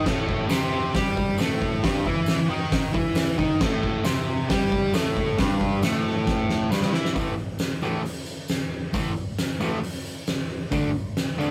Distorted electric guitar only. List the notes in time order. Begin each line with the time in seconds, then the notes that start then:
0.06 A2 A3
0.49 C3 C4
0.94 G3 G4
1.38 A2 A3
1.83 G2 G3
2.05 E3 E4
2.49 D#3 D#4
2.93 E3 E4
3.38 D#3 D#4
3.61 A2 A3
4.04 C3 C4
4.48 G3 G4
4.93 A2 A3
5.38 G2 G3
5.82 A2 A3
6.70 G2 G3
6.93 E3 E4
7.14 A2 E3 A3
7.82 A2 E3 A3
8.93 A2 E3 A3
9.60 A2 E3 A3
10.71 D3 A3 D4
11.38 D3 A3 D4